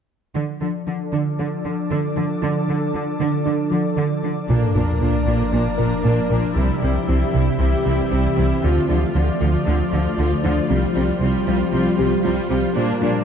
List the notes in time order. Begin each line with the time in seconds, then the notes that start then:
0.35 D3 F3 D4 A4 D5
0.61 D3 F3
0.87 D3 F3
1.13 D3
1.39 D3 D4
1.65 D3 F3
1.90 D3
2.16 D3 F3
2.42 D3
2.68 D3 F3
2.94 D3 F3
3.20 D3
3.46 D3 D4
3.71 D3 F3
3.97 D3
4.23 D3 F3
4.49 A#1 A#2 F3 A#3 D4 A#4 D5, sub drop
4.75 A#1 A#2 A#3 D4
5.00 A#1 A#2 A#3 D4
5.26 A#1 A#2 A#3 D4
5.52 A#1 A#2 A#3 D4
5.78 A#1 A#2 A#3 D4 A#4
6.03 A#1 A#2 A#3 D4
6.29 A#1 A#2 A#3 D4 A#4
6.55 C2 C3 E3 G3 C4 E4 G4 E5
6.81 C2 C3 E3 G3 E4
7.07 C2 C3 E3 G3 E4
7.33 C2 C3 G3 E4
7.59 C2 C3 E3 G3 E4
7.85 C2 C3 G3 C4 E4
8.11 C2 C3 G3 E4
8.37 C2 C3 G3 C4 E4
8.62 D2 D3 F3 A3 F4 D5
8.88 D2 D3 F3 F4
9.15 D2 D3 F3 F4
9.40 D2 D3 F3 F4
9.66 D2 D3 F3 F4
9.92 D2 D3 F3 D4 F4
10.17 D2 D3 F3 F4
10.43 D2 D3 F3 D4 F4
10.69 C2 C3 F3 G3 F4 C5
10.95 C2 C3 G3 C4 F4
11.20 C2 C3 G3 C4 F4
11.47 C2 C3 F3 G3 F4
11.72 C2 C3 G3 C4 F4
11.98 C2 C3 G3 F4 G4
12.24 C2 C3 F3 G3 F4
12.50 C2 C3 G3 F4 G4
12.76 A#1 A#2 A#3 D4 D5
13.01 A#1 A#2 A#3 D4